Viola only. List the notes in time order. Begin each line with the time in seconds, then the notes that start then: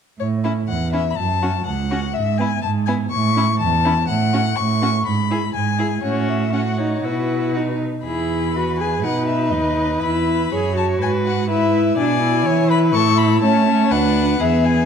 0.45 C#4
0.94 C#4
1.43 C#4
1.91 C#4
2.39 B3
2.88 B3
3.36 C#4
3.85 C#4
4.34 C#4
4.82 C#4
5.31 E4
5.79 E4
6.02 C#4
6.53 C#4
6.79 D#4
7.04 E4
7.56 D#4
8.06 E4
8.56 F#4
8.80 G#4
9.04 D#4
10.03 E4
10.53 G#4
10.76 F#4
11.50 E4
11.99 D4
12.23 E4
13.43 C#4
13.67 C#4
13.92 D4
14.41 B3